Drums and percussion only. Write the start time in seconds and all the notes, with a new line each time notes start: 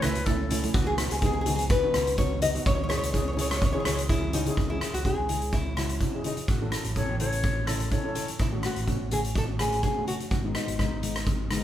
0.02 cross-stick, closed hi-hat, high conga, low conga
0.15 closed hi-hat
0.26 kick, closed hi-hat
0.51 closed hi-hat, low conga
0.63 closed hi-hat, high conga
0.74 kick, closed hi-hat
0.98 cross-stick, closed hi-hat
1.11 closed hi-hat
1.22 kick, closed hi-hat, high conga
1.46 closed hi-hat, low conga
1.59 closed hi-hat, high conga
1.70 kick, closed hi-hat
1.94 cross-stick, closed hi-hat, high conga, low conga
2.07 closed hi-hat
2.18 kick, closed hi-hat
2.42 closed hi-hat, low conga
2.55 closed hi-hat, high conga
2.66 kick, closed hi-hat
2.90 cross-stick, closed hi-hat
3.03 closed hi-hat
3.14 kick, closed hi-hat, high conga
3.37 closed hi-hat, low conga
3.50 cross-stick, closed hi-hat, high conga
3.62 kick, closed hi-hat
3.85 cross-stick, closed hi-hat, low conga
3.98 closed hi-hat, high conga
4.09 kick, closed hi-hat, high conga
4.22 high conga
4.33 closed hi-hat, low conga
4.45 closed hi-hat, low conga
4.57 kick, closed hi-hat
4.81 cross-stick, closed hi-hat
4.94 closed hi-hat, high conga
5.05 kick, closed hi-hat
5.29 closed hi-hat, low conga
5.42 closed hi-hat
5.53 kick, closed hi-hat
5.76 cross-stick, closed hi-hat, low conga
5.89 closed hi-hat, high conga
6.00 kick, closed hi-hat
6.24 closed hi-hat, low conga
6.37 closed hi-hat, high conga
6.48 kick, closed hi-hat
6.72 cross-stick, closed hi-hat
6.84 closed hi-hat, high conga
6.96 kick, closed hi-hat
7.20 closed hi-hat, low conga
7.32 closed hi-hat
7.43 kick, closed hi-hat
7.67 cross-stick, closed hi-hat, low conga
7.80 closed hi-hat, high conga
7.91 kick, closed hi-hat
8.15 closed hi-hat, low conga
8.28 closed hi-hat, high conga
8.39 kick, closed hi-hat
8.63 cross-stick, closed hi-hat
8.76 closed hi-hat, high conga
8.88 kick, closed hi-hat
9.11 closed hi-hat, low conga
9.25 closed hi-hat
9.36 kick, closed hi-hat
9.59 cross-stick, closed hi-hat, low conga
9.72 closed hi-hat, high conga
9.83 kick, closed hi-hat
10.07 closed hi-hat, low conga
10.20 closed hi-hat, high conga
10.31 kick, closed hi-hat
10.55 cross-stick, closed hi-hat
10.67 closed hi-hat, high conga
10.79 kick, cross-stick, closed hi-hat
11.03 closed hi-hat, high conga, low conga
11.16 cross-stick, closed hi-hat
11.26 kick, closed hi-hat, low conga
11.51 cross-stick, closed hi-hat, low conga